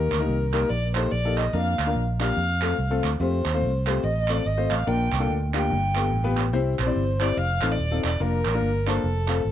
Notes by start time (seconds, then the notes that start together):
Already playing: D#3 A#4
0.12 D2, clap
0.19 A#3 D#4 G4 A#4
0.28 C2
0.53 A#3 D#4 G4 A#4, clap
0.70 A#1 D5
0.95 A#3 D#4 G4 A4 C5, clap
1.11 A#1 D5
1.25 A#3 D#4 G4 A4
1.36 D#5, clap
1.53 F2 A#3 D4 F4 A#4 F5
1.79 D2, clap
1.87 A#3 D4 F4 A#4
1.95 A#1
2.20 A#3 D4 F4 G4 F5, clap
2.37 F2
2.62 A3 C4 F4 A4, clap
2.78 C2
2.91 A3 C4 F4 A4
3.04 D2, clap
3.20 F2 A3 C4 F4 G4 C5
3.45 D#2, clap
3.54 A3 C4 F4 C5
3.62 C2
3.87 A3 C4 F4 G4 C5, clap
4.04 A1 D#5
4.28 A3 C4 F4 A4 D5, clap
4.46 G#1 D#5
4.57 A3 C4 F4 C5
4.70 A1 F5, clap
4.86 A#1 A#2 A#3 D4 F4 A#4 G5
5.12 C2, clap
5.20 A#3 D4 F4 A4
5.29 D2
5.53 A#3 D4 F4 G4 G5, clap
5.70 G1 G2
5.95 B3 F4 G4 A4, clap
6.12 A1
6.24 B3 F4 G4 B4
6.37 clap
6.53 C2 C3 C4 E4 G4 C5
6.79 A#1 C5, clap
6.86 C4 E4 G4 D5
6.96 G1
7.20 C4 E4 G4 C5 D5, clap
7.37 F1 F5
7.62 A1 C4 D#4 F4 A4, clap
7.72 D5
7.79 D#1
7.91 C4 D#4 F4 A4
8.04 E1 D5, clap
8.20 F1 A#3 D4 F4 A#4
8.45 A1, clap
8.54 A#3 D4 F4 A#4
8.62 G1
8.87 A#3 D4 F4 A4 C5, clap
9.04 F1
9.28 A3 C4 F4 A4, clap
9.45 G#1